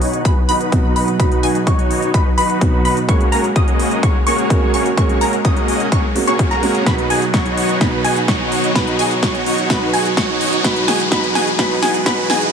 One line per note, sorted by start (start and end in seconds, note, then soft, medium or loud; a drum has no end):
0.00 0.69 B2 medium
0.00 0.69 F#3 medium
0.00 3.05 F#3 medium
0.00 0.69 B3 medium
0.00 0.22 D#4 medium
0.00 0.70 D#4 medium
0.00 3.05 D#4 medium
0.00 0.22 F#4 medium
0.00 0.70 F#4 medium
0.00 3.05 B4 medium
0.00 0.22 C#5 medium
0.00 0.22 C#6 medium
0.00 open hi-hat medium
0.00 riser medium
0.13 closed hi-hat medium
0.25 0.39 D#4 medium
0.25 0.39 F#4 medium
0.25 0.39 B4 medium
0.25 0.39 B5 loud
0.25 kick loud
0.25 closed hi-hat medium
0.49 0.93 D#4 medium
0.49 0.93 F#4 medium
0.49 0.93 B4 loud
0.49 0.93 B5 loud
0.49 open hi-hat loud
0.61 closed hi-hat medium
0.72 1.16 B2 medium
0.72 1.17 F#3 medium
0.72 1.17 B3 medium
0.72 1.17 D#4 medium
0.72 1.17 F#4 medium
0.72 kick loud
0.72 closed hi-hat medium
0.96 1.10 D#4 medium
0.96 1.10 F#4 medium
0.96 1.10 B4 medium
0.96 1.10 B5 medium
0.96 open hi-hat medium
1.08 closed hi-hat medium
1.18 2.58 B2 medium
1.18 2.58 F#3 medium
1.18 2.58 B3 medium
1.18 1.40 D#4 medium
1.18 2.59 D#4 medium
1.18 1.40 F#4 medium
1.18 2.59 F#4 medium
1.18 1.40 B4 medium
1.18 1.40 B5 medium
1.18 kick loud
1.18 closed hi-hat medium
1.32 closed hi-hat soft
1.43 1.57 D#4 medium
1.43 1.57 F#4 medium
1.43 1.57 G#4 medium
1.43 1.57 G#5 medium
1.43 open hi-hat loud
1.55 closed hi-hat medium
1.67 2.11 D#4 medium
1.67 2.11 F#4 medium
1.67 2.11 C#5 medium
1.67 2.11 C#6 medium
1.67 kick loud
1.67 closed hi-hat medium
1.79 closed hi-hat soft
1.91 open hi-hat medium
2.02 closed hi-hat soft
2.14 2.28 D#4 medium
2.14 2.28 F#4 medium
2.14 2.28 B4 medium
2.14 2.28 B5 medium
2.14 kick loud
2.14 closed hi-hat medium
2.38 2.82 D#4 medium
2.38 2.82 F#4 medium
2.38 2.82 B4 loud
2.38 2.82 B5 loud
2.38 open hi-hat loud
2.50 closed hi-hat medium
2.61 3.05 B2 medium
2.61 3.06 F#3 medium
2.61 3.06 B3 medium
2.61 3.06 D#4 medium
2.61 3.06 F#4 loud
2.61 kick loud
2.61 closed hi-hat medium
2.85 2.99 D#4 medium
2.85 2.99 F#4 medium
2.85 2.99 B4 medium
2.85 2.99 B5 medium
2.85 open hi-hat medium
2.97 closed hi-hat medium
3.07 4.47 G#3 medium
3.07 6.83 G#3 medium
3.07 4.47 A#3 medium
3.07 3.29 A#3 medium
3.07 3.29 C#4 medium
3.07 4.48 C#4 medium
3.07 6.83 F#4 medium
3.07 3.29 F#4 medium
3.07 4.48 F#4 medium
3.07 3.29 G#4 medium
3.07 6.83 A#4 medium
3.07 3.29 C#5 medium
3.07 3.29 C#6 medium
3.07 kick loud
3.07 closed hi-hat medium
3.20 closed hi-hat soft
3.32 3.46 A#3 medium
3.32 3.46 C#4 medium
3.32 3.46 F#4 medium
3.32 3.46 G#4 medium
3.32 3.46 A#4 medium
3.32 3.46 A#5 medium
3.32 open hi-hat loud
3.44 closed hi-hat soft
3.56 4.00 A#3 medium
3.56 4.00 C#4 medium
3.56 4.00 F#4 medium
3.56 4.00 G#4 medium
3.56 4.00 D#5 medium
3.56 4.00 D#6 medium
3.56 kick loud
3.56 closed hi-hat medium
3.68 closed hi-hat soft
3.79 open hi-hat medium
3.91 closed hi-hat soft
4.03 4.17 A#3 medium
4.03 4.17 C#4 medium
4.03 4.17 F#4 medium
4.03 4.17 G#4 medium
4.03 4.17 C#5 medium
4.03 4.17 C#6 loud
4.03 kick loud
4.03 closed hi-hat medium
4.27 4.71 A#3 medium
4.27 4.71 C#4 medium
4.27 4.71 F#4 medium
4.27 4.71 G#4 medium
4.27 4.71 C#5 loud
4.27 4.71 C#6 loud
4.27 open hi-hat loud
4.38 closed hi-hat soft
4.50 4.94 G#3 medium
4.50 4.95 A#3 medium
4.50 4.95 C#4 medium
4.50 4.95 F#4 loud
4.50 kick loud
4.50 closed hi-hat medium
4.74 4.88 A#3 medium
4.74 4.88 C#4 medium
4.74 4.88 F#4 medium
4.74 4.88 G#4 medium
4.74 4.88 C#5 medium
4.74 4.88 C#6 medium
4.74 open hi-hat medium
4.86 closed hi-hat soft
4.96 6.13 G#3 medium
4.96 6.13 A#3 medium
4.96 5.18 A#3 medium
4.96 5.18 C#4 medium
4.96 6.14 C#4 medium
4.96 5.18 F#4 medium
4.96 6.14 F#4 medium
4.96 5.18 G#4 medium
4.96 5.18 C#5 loud
4.96 5.18 C#6 medium
4.96 kick loud
4.96 closed hi-hat medium
5.09 closed hi-hat soft
5.21 5.35 A#3 medium
5.21 5.35 C#4 medium
5.21 5.35 F#4 medium
5.21 5.35 G#4 medium
5.21 5.35 A#4 medium
5.21 5.35 A#5 medium
5.21 open hi-hat loud
5.33 closed hi-hat soft
5.45 5.89 A#3 medium
5.45 5.89 C#4 medium
5.45 5.89 F#4 medium
5.45 5.89 G#4 medium
5.45 5.89 D#5 medium
5.45 5.89 D#6 medium
5.45 kick loud
5.45 closed hi-hat medium
5.56 closed hi-hat soft
5.68 open hi-hat medium
5.80 closed hi-hat soft
5.92 6.06 A#3 medium
5.92 6.06 C#4 medium
5.92 6.06 F#4 medium
5.92 6.06 G#4 medium
5.92 6.06 C#5 loud
5.92 6.06 C#6 medium
5.92 kick loud
5.92 closed hi-hat medium
6.15 6.60 G#3 medium
6.15 6.60 A#3 medium
6.15 6.60 C#4 medium
6.15 6.60 F#4 medium
6.15 open hi-hat loud
6.27 6.47 A#3 medium
6.27 6.47 C#4 medium
6.27 6.47 F#4 medium
6.27 6.47 G#4 medium
6.27 6.47 C#5 loud
6.27 6.48 C#6 medium
6.27 closed hi-hat soft
6.39 kick loud
6.39 closed hi-hat medium
6.51 6.84 A#3 medium
6.51 6.84 C#4 medium
6.51 6.84 F#4 medium
6.51 6.84 G#4 medium
6.51 6.84 A#4 loud
6.51 6.84 A#5 loud
6.62 6.83 G#3 medium
6.62 6.84 A#3 medium
6.62 6.84 C#4 medium
6.62 6.84 F#4 loud
6.62 open hi-hat medium
6.75 closed hi-hat soft
6.85 7.78 B2 medium
6.85 7.79 F#3 medium
6.85 10.61 F#3 medium
6.85 7.79 B3 medium
6.85 7.07 D#4 medium
6.85 10.61 D#4 medium
6.85 7.79 D#4 medium
6.85 7.07 F#4 medium
6.85 7.07 B4 medium
6.85 8.74 B4 medium
6.85 7.07 B5 medium
6.85 kick loud
6.85 snare soft
6.85 closed hi-hat medium
6.98 closed hi-hat soft
7.10 7.24 D#4 medium
7.10 7.24 F#4 medium
7.10 7.24 G#4 medium
7.10 7.24 G#5 medium
7.10 open hi-hat loud
7.22 closed hi-hat soft
7.34 7.78 D#4 medium
7.34 7.78 F#4 medium
7.34 7.78 C#5 medium
7.34 7.78 C#6 medium
7.34 kick loud
7.34 snare soft
7.34 closed hi-hat medium
7.46 closed hi-hat soft
7.57 open hi-hat medium
7.69 closed hi-hat soft
7.80 8.73 B2 medium
7.80 8.73 F#3 medium
7.80 8.74 B3 medium
7.80 8.01 D#4 medium
7.80 8.74 D#4 medium
7.80 8.01 F#4 medium
7.80 8.74 F#4 medium
7.80 8.01 B4 medium
7.80 8.01 B5 medium
7.80 kick loud
7.80 snare medium
7.80 closed hi-hat medium
8.04 8.19 D#4 medium
8.04 8.19 F#4 medium
8.04 8.19 G#4 medium
8.04 8.19 G#5 medium
8.04 open hi-hat loud
8.16 closed hi-hat medium
8.28 8.73 D#4 medium
8.28 8.73 F#4 medium
8.28 8.73 C#5 medium
8.28 8.73 C#6 medium
8.28 kick loud
8.28 snare medium
8.28 closed hi-hat medium
8.52 open hi-hat medium
8.64 closed hi-hat medium
8.74 9.67 B2 medium
8.74 9.68 F#3 medium
8.74 9.68 B3 medium
8.74 8.96 D#4 medium
8.74 9.68 D#4 medium
8.74 8.96 F#4 medium
8.74 9.69 F#4 medium
8.74 8.96 B4 medium
8.74 10.63 C#5 medium
8.74 8.96 B5 medium
8.74 kick loud
8.74 snare medium
8.74 closed hi-hat medium
8.87 closed hi-hat soft
8.99 9.13 D#4 medium
8.99 9.13 F#4 medium
8.99 9.13 G#4 medium
8.99 9.13 G#5 medium
8.99 open hi-hat loud
9.11 closed hi-hat medium
9.23 9.67 D#4 medium
9.23 9.67 F#4 medium
9.23 9.67 C#5 medium
9.23 9.67 C#6 medium
9.23 kick loud
9.23 snare medium
9.23 closed hi-hat medium
9.35 closed hi-hat soft
9.46 open hi-hat medium
9.58 closed hi-hat medium
9.69 10.62 B2 medium
9.69 10.62 F#3 medium
9.69 10.63 B3 medium
9.69 9.90 D#4 medium
9.69 10.63 D#4 medium
9.69 9.90 F#4 medium
9.69 10.63 F#4 medium
9.69 9.90 B4 medium
9.69 9.90 B5 medium
9.69 kick loud
9.69 snare medium
9.69 closed hi-hat medium
9.93 10.08 D#4 medium
9.93 10.08 F#4 medium
9.93 10.08 G#4 medium
9.93 10.08 G#5 medium
9.93 open hi-hat loud
10.05 closed hi-hat medium
10.17 10.62 D#4 medium
10.17 10.62 F#4 medium
10.17 10.62 C#5 medium
10.17 10.62 C#6 medium
10.17 kick loud
10.17 snare medium
10.17 closed hi-hat medium
10.41 open hi-hat medium
10.53 closed hi-hat medium
10.63 11.09 B2 medium
10.63 12.52 E3 medium
10.63 11.10 F#3 medium
10.63 12.52 G#3 medium
10.63 11.10 B3 medium
10.63 10.85 D#4 medium
10.63 11.10 D#4 medium
10.63 10.85 F#4 medium
10.63 11.10 F#4 medium
10.63 10.84 B4 medium
10.63 12.52 B4 medium
10.63 10.84 B5 medium
10.63 kick loud
10.63 snare medium
10.63 closed hi-hat medium
10.76 closed hi-hat soft
10.88 11.02 D#4 medium
10.88 11.02 F#4 medium
10.88 11.02 G#4 medium
10.88 11.02 G#5 medium
10.88 snare medium
10.88 open hi-hat loud
11.00 closed hi-hat medium
11.11 11.56 B2 medium
11.11 11.57 F#3 medium
11.11 11.57 B3 medium
11.11 11.32 D#4 medium
11.11 11.57 D#4 medium
11.11 11.32 F#4 medium
11.11 11.58 F#4 medium
11.11 11.32 B4 loud
11.11 11.32 B5 loud
11.11 kick loud
11.11 snare medium
11.11 closed hi-hat medium
11.24 closed hi-hat soft
11.35 11.49 D#4 medium
11.35 11.49 F#4 medium
11.35 11.49 G#4 medium
11.35 11.49 G#5 medium
11.35 snare medium
11.35 open hi-hat medium
11.47 closed hi-hat medium
11.58 12.03 B2 medium
11.58 12.04 F#3 medium
11.58 12.04 B3 medium
11.58 11.79 D#4 medium
11.58 12.05 D#4 medium
11.58 11.79 F#4 medium
11.58 12.05 F#4 medium
11.58 11.79 B4 medium
11.58 11.79 B5 medium
11.58 kick loud
11.58 snare medium
11.58 closed hi-hat medium
11.82 11.97 D#4 medium
11.82 11.97 F#4 medium
11.82 11.97 G#4 medium
11.82 11.97 G#5 medium
11.82 snare medium
11.82 open hi-hat loud
11.94 closed hi-hat medium
12.05 12.51 B2 medium
12.05 12.51 F#3 medium
12.05 12.52 B3 medium
12.05 12.26 D#4 medium
12.05 12.52 D#4 medium
12.05 12.26 F#4 medium
12.05 12.52 F#4 medium
12.05 12.26 B4 loud
12.05 12.26 B5 loud
12.05 kick loud
12.05 snare medium
12.05 closed hi-hat medium
12.30 12.44 D#4 medium
12.30 12.44 F#4 medium
12.30 12.44 G#4 medium
12.30 12.44 G#5 medium
12.30 snare medium
12.30 open hi-hat medium
12.42 closed hi-hat medium